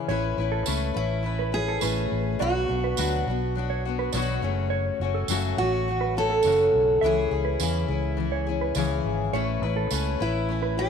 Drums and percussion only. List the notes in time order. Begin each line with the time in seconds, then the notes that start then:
0.66 tambourine
1.81 tambourine
2.97 tambourine
4.13 tambourine
5.28 tambourine
6.43 tambourine
7.60 tambourine
8.75 tambourine
9.91 tambourine